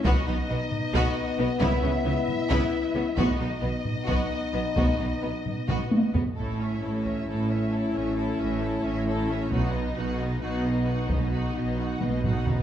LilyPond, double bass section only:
\new Staff \with { instrumentName = "Double bass section" } { \clef bass \time 7/8 \key b \mixolydian \tempo 4 = 133 b,,8 b,,8 b,,8 r8 b,,8 r8 b,,8 | cis,8 cis,8 cis,8 r8 cis,8 r8 cis,8 | b,,8 b,,8 b,,8 r8 b,,8 r8 b,,8 | b,,8 b,,8 b,,8 r8 b,,8 r8 b,,8 |
a,,4 a,,4 a,,4. | a,,4 a,,4 a,,4. | b,,4 b,,4 b,,4. | b,,4 b,,4 b,,4. | }